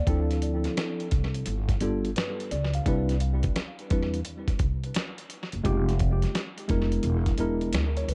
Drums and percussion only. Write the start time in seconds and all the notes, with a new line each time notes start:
0.07 kick, closed hi-hat
0.31 closed hi-hat
0.42 closed hi-hat
0.64 snare, closed hi-hat
0.77 snare, closed hi-hat
1.00 closed hi-hat
1.11 kick, closed hi-hat
1.34 closed hi-hat
1.46 closed hi-hat
1.69 kick, closed hi-hat
1.80 closed hi-hat
2.05 closed hi-hat
2.16 snare, closed hi-hat
2.40 closed hi-hat
2.51 closed hi-hat
2.74 closed hi-hat
2.86 kick, closed hi-hat
3.09 closed hi-hat
3.20 closed hi-hat
3.43 kick, closed hi-hat
3.56 snare, closed hi-hat
3.79 closed hi-hat
3.90 kick, closed hi-hat
4.14 closed hi-hat
4.25 closed hi-hat
4.48 kick, closed hi-hat
4.59 kick, closed hi-hat
4.84 closed hi-hat
4.94 snare, closed hi-hat
5.18 closed hi-hat
5.30 closed hi-hat
5.52 closed hi-hat
5.65 kick, closed hi-hat
5.89 closed hi-hat
5.99 kick, closed hi-hat
6.22 snare, closed hi-hat
6.35 snare, closed hi-hat
6.58 closed hi-hat
6.69 kick, closed hi-hat
6.92 closed hi-hat
7.03 closed hi-hat
7.26 kick, closed hi-hat
7.38 closed hi-hat
7.61 closed hi-hat
7.73 snare, closed hi-hat
7.97 closed hi-hat
8.09 closed hi-hat